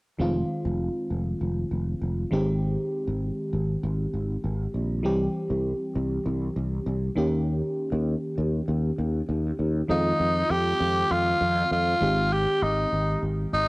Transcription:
0.19 F1 D#3 G#3 C4 F4
0.65 F1
1.10 F1
1.41 F1
1.71 F1
2.01 F1
2.31 G#1 D#3 G#3 C4 G4
3.08 G#1
3.53 G#1
3.83 G#1
4.13 G#1
4.44 G#1
4.74 A#1
5.03 C2 E3 G3 C4 G4
5.50 C2
5.95 C2
6.26 C2
6.56 C2
6.86 C2
7.16 D#2 D#3 A#3 C#4 G4
7.92 D#2
8.38 D#2
8.68 D#2
8.98 D#2
9.29 D#2
9.59 D#2
9.88 F2 D#3 G#3 C4 D#4 F4
10.20 F2
10.50 F2 G4
10.80 F2
11.11 F2 F4
11.41 F2
11.71 F2 F4
12.00 G#1 D#3 G#3 C4 G4
12.33 G4
12.62 G#1 D#4
12.92 G#1
13.23 G#1
13.53 G#1 D#4

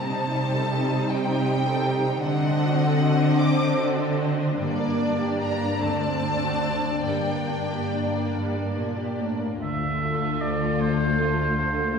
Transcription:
Already playing: C3 G3 C4 D#4 G4 C5 A5
0.15 D#4
0.34 G3 G4
0.53 A4
0.72 G4 A4
0.91 D#4
1.10 C4 G4 G5
1.30 D#4
1.48 G4 A4
1.66 A4
1.86 G3 G4
2.05 D#4
2.24 D3 C4 D4 D#5 F#5
2.45 D4
2.64 C4 F#4
2.84 A4
3.02 F#4 A4
3.22 D4
3.39 C4 C5 D6
3.59 D4
3.78 F#4 A4
3.98 A4
4.19 C4 F#4
4.40 D4
4.60 G2 G3 A#3 D5
4.81 A#3
5.00 A#3 D4
5.21 G4
5.41 D4 G4 A#5
5.62 A#3
5.81 D2 D3 A3 C4 A5
6.03 C4
6.23 C4 D4
6.44 F#4
6.64 D4 F#4
6.86 C4
7.06 G2 G3 A#3 D4 G5
7.28 A#3
7.49 A#3 D4
7.73 G4
7.93 D4 G4
8.16 A#3
8.35 G2 G3 A#4
8.56 A#3
8.77 A#2 D4 G4
8.99 G4
9.20 A2 A#3 D4
9.42 A#3
9.62 D2 D3 A3 F4 A4 E5
10.02 A4
10.41 G4 D5
10.80 A4 C5
11.19 F4
11.58 A4

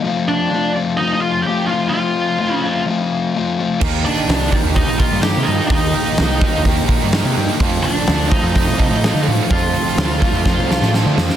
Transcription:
0.03 F3 A3 C4 F4
0.28 D4 D5
0.51 F3 A3 C4 F4
0.75 A3 C4 F4
0.97 F3 D#4 D#5
1.02 A3 C4 F4
1.13 D#5
1.20 F4 F5
1.42 G5
1.46 F3 A3 C4 F4 G4
1.66 F4 F5
1.71 A3 C4 F4
1.89 F3 F5
1.94 A3 C4 F4
2.38 F3 A3 C4 F4
2.54 D#5
2.63 A3 C4 F4
2.86 F3 A3 C4 F4
3.35 F3 A3 C4 F4
3.59 A3 C4 F4
3.81 D#2 D#3 A#3 D#4 G4 A#4, kick, crash
4.04 D4 D#4 G4 A#4 D5, open hi-hat
4.28 C2 D#3 A#3 D#4 G4 A#4, snare, open hi-hat
4.51 A#3 D#4 G4 A#4, kick, open hi-hat
4.64 D#2
4.74 D#3 A#3 D#4 G4 D#5, kick, open hi-hat
4.88 A#1
4.99 F4 G4 A#4 F5, kick, open hi-hat
5.03 D#4
5.13 G2
5.22 D#3 A#3 D#4 G4 A#4 G5, snare, open hi-hat
5.37 C3
5.43 D#4 G4 D#5, open hi-hat
5.47 G2 A#3 D#4
5.67 D#2 D#3 A#3 D#4 D#5, kick, open hi-hat
5.72 D#4 G4 A#4
5.94 D#4 G4 A#4, open hi-hat
6.17 C2 D#3 A#3 D#4 G4 A#4, snare, open hi-hat
6.41 D#4 G4 A#4, kick, snare, open hi-hat
6.45 A#3
6.57 D#2
6.65 D#3 A#3 D#4 G4, kick, open hi-hat
6.78 A#1
6.88 G4 A#4, kick, open hi-hat
6.93 D#4
7.03 G2
7.12 D#3 A#3 D#4 G4, snare, open hi-hat
7.16 A#4
7.25 C3
7.36 G2 A#3 D#4 G4, open hi-hat
7.60 F2 F3 A3 C4 A4, kick, open hi-hat
7.64 F4
7.83 C4 D4 F4 A4 D5, open hi-hat
8.07 D2 F3 A3 C4, snare, open hi-hat
8.11 F4 A4
8.30 D#4 F4 A4 D#5, kick, open hi-hat
8.35 A3 C4
8.43 F2
8.56 F3 A3 C4 F4, kick, open hi-hat
8.67 C2
8.79 C4 F4 A4, kick, open hi-hat
8.90 A2
9.02 F3 A3 C4 F4 A4, snare, open hi-hat
9.14 D3
9.28 A2 A3 C4 F4, open hi-hat
9.50 F2 F3 A3 F4 A4 F5, kick, open hi-hat
9.54 C4 F4
9.73 F4 A4, open hi-hat
9.77 C4
9.97 D2 F3 A3 C4 A4, snare, open hi-hat
10.02 F4
10.20 F4 A4, kick, open hi-hat
10.24 A3 C4
10.33 F2
10.45 F3 A3 C4 F4, kick, snare
10.57 C2
10.69 C4 F4 A4, snare
10.81 A2, snare
10.93 F3 A3 C4 F4 A4, snare
11.06 D3
11.17 F2 A3 C4 F4, snare
11.30 snare

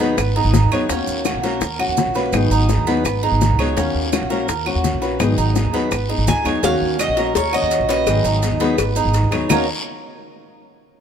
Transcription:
Already playing: D#2
0.00 F#3 B3 D#4 G#4, high bongo, short guiro, maracas
0.17 G#1, muted steel-string acoustic guitar stroke, high bongo, long guiro, claves, maracas
0.36 B3 D#4 G#4, high bongo
0.45 G#1
0.54 high bongo, low bongo, short guiro, maracas
0.63 D#2
0.71 F#3 B3 D#4 G#4 C#5, high bongo, short guiro, claves, maracas
0.89 D#2 D#3 A#3 C#4 F#4, high bongo, long guiro, maracas
1.07 D#2, maracas
1.25 D#3 A#3 C#4 F#4, high bongo, short guiro, claves, maracas
1.34 A#1
1.43 A#3 C#4 F#4 A#4, high bongo, short guiro, maracas
1.61 D#2, muted steel-string acoustic guitar stroke, high bongo, long guiro, maracas
1.79 A#3 C#4 F#4, high bongo, claves
1.88 D#2
1.97 high bongo, low bongo, short guiro, maracas
2.06 A#1
2.14 A#3 C#4 F#4 B4, high bongo, short guiro, maracas
2.32 G#1 D#3 F#3 B3 D#4 G#4, high bongo, long guiro, claves, maracas
2.51 G#1 D#4, maracas
2.69 F#3 B3 D#4 G#4, high bongo, short guiro, maracas
2.78 D#2
2.87 F#3 B3 D#4 G#4, high bongo, short guiro, maracas
3.05 G#1, muted steel-string acoustic guitar stroke, high bongo, long guiro, claves, maracas
3.23 B3 D#4 G#4, high bongo
3.32 G#1
3.41 high bongo, low bongo, short guiro, maracas
3.49 C#2
3.59 F#3 B3 D#4 G#4 C#5, high bongo, short guiro, claves, maracas
3.76 D#2 D#3 A#3 C#4 F#4, high bongo, long guiro, maracas
3.95 D#2
4.12 D#3 A#3 C#4 F#4, high bongo, short guiro, claves, maracas
4.21 A#1
4.30 A#3 C#4 F#4 A#4, high bongo, short guiro, maracas
4.48 D#2, muted steel-string acoustic guitar stroke, high bongo, long guiro, maracas
4.66 A#3 C#4 F#4, high bongo, claves
4.75 D#2
4.84 high bongo, low bongo, short guiro, maracas
4.93 A#1
5.02 A#3 C#4 F#4 B4, high bongo, short guiro, maracas
5.19 G#1 D#3 F#3 B3 D#4 G#4, high bongo, long guiro, claves, maracas
5.38 G#1 D#4, maracas
5.55 F#3 B3 D#4 G#4, high bongo, short guiro, maracas
5.65 D#2
5.73 F#3 B3 D#4 G#4, high bongo, short guiro, maracas
5.91 G#1, muted steel-string acoustic guitar stroke, high bongo, long guiro, claves, maracas
6.09 B3 D#4 G#4, high bongo
6.18 G#1
6.27 C#2 G#5, high bongo, low bongo, short guiro, maracas
6.44 D#2 F#3 B3 D#4 G#4 C#5, high bongo, short guiro, claves, maracas
6.63 D#2 D#3 A#3 C#4 F#4 F5, cowbell, long guiro, maracas
6.81 D#2
6.99 D#3 A#3 C#4 F#4 D#5, cowbell, short guiro, claves, maracas
7.08 A#1
7.17 A#3 C#4 F#4 A#4, cowbell, short guiro, maracas
7.35 D#2 C#5, muted steel-string acoustic guitar stroke, cowbell, long guiro, maracas
7.53 A#3 C#4 F#4 D#5, claves
7.62 D#2
7.71 cowbell, short guiro, maracas
7.80 A#1
7.89 A#3 C#4 F#4 B4 D#5, cowbell, short guiro, maracas
8.07 G#1 D#3 F#3 B3 D#4 G#4, cowbell, long guiro, claves, maracas
8.24 G#1 D#4, maracas
8.42 F#3 B3 D#4 G#4, cowbell, short guiro, maracas
8.51 D#2
8.60 F#3 B3 D#4 G#4, cowbell, short guiro, maracas
8.78 G#1, muted steel-string acoustic guitar stroke, cowbell, long guiro, claves, maracas
8.96 B3 D#4 G#4, maracas
9.05 G#1
9.14 cowbell, short guiro, maracas
9.23 D#2
9.31 F#3 B3 D#4 G#4 C#5, cowbell, short guiro, claves, maracas
9.49 D#2 D#3 A#3 C#4 D#4 F#4 A#4 C#5, low bongo, long guiro, claves, maracas

